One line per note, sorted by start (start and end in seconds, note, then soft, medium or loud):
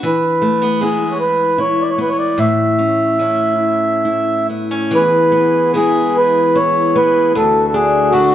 0.00 3.53 E3 medium
0.00 0.12 D4 soft
0.00 0.11 F#4 soft
0.00 0.45 B4 soft
0.05 0.83 B4 medium
0.42 0.62 A3 soft
0.62 0.80 B3 soft
0.81 2.46 G#3 soft
0.81 1.97 B3 soft
0.81 1.58 E4 soft
0.81 1.13 G#4 medium
1.11 1.18 C#5 soft
1.20 1.60 B4 medium
1.58 3.20 E4 medium
1.58 1.83 C#5 medium
1.81 1.90 D5 medium
1.90 1.99 C#5 medium
1.98 2.46 B3 soft
1.98 2.09 B4 medium
2.09 2.18 C#5 medium
2.19 2.39 D5 medium
2.38 4.92 A2 medium
2.38 4.47 E5 medium
2.79 3.18 C#4 soft
3.19 5.01 A3 soft
3.19 4.49 C#4 soft
3.19 4.04 E4 soft
4.05 5.75 E4 soft
4.49 4.71 B3 soft
4.71 5.00 C#4 soft
4.91 7.34 E3 medium
4.91 7.33 E3 medium
4.91 7.32 B3 medium
4.91 7.32 G#4 medium
4.91 5.72 B4 medium
5.32 5.73 B3 soft
5.74 7.43 G#3 soft
5.74 6.94 B3 soft
5.74 6.54 E4 medium
5.74 6.17 G#4 medium
6.17 6.57 B4 medium
6.55 7.43 E4 medium
6.55 6.97 C#5 medium
6.96 7.43 B3 medium
6.96 7.33 B4 medium
7.34 8.35 D2 medium
7.34 8.35 D3 medium
7.34 8.35 A3 medium
7.34 8.35 F#4 medium
7.34 7.66 A4 medium
7.68 7.74 A4 medium
7.74 8.11 D4 medium
7.74 8.13 G#4 medium
8.11 8.35 A3 medium
8.11 8.35 D4 soft
8.11 8.35 F#4 medium